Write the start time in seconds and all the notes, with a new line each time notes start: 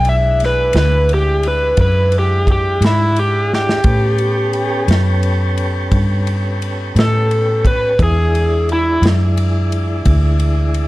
Already playing: B1
0.05 G#3 D4 E4 F#5, ride
0.09 E5
0.40 snare, ride
0.46 B4
0.73 D2, snare, ride
0.78 B4
1.09 ride
1.14 G4
1.43 ride
1.48 B4
1.77 F#2, kick, ride
1.81 B4
2.12 ride
2.19 G4
2.47 kick, ride
2.52 G4
2.81 G#2, snare, ride
2.86 E4
3.16 G4, ride
3.53 G4, snare
3.69 snare
3.84 A2 B3 C#4 G4 A4, kick, ride
4.18 ride
4.53 ride
4.88 F#2, snare, ride
5.23 ride
5.58 ride
5.92 G2, kick, ride
6.27 ride
6.62 ride
6.96 A2 A4, snare, ride
7.31 ride
7.65 B4, kick, ride
7.98 E2 E3 G#3 D4 E4, kick, ride
8.04 G#4
8.35 ride
8.69 ride
8.73 E4
9.02 F#2, snare, ride
9.37 ride
9.72 ride
10.05 D2, kick, ride
10.40 ride
10.74 ride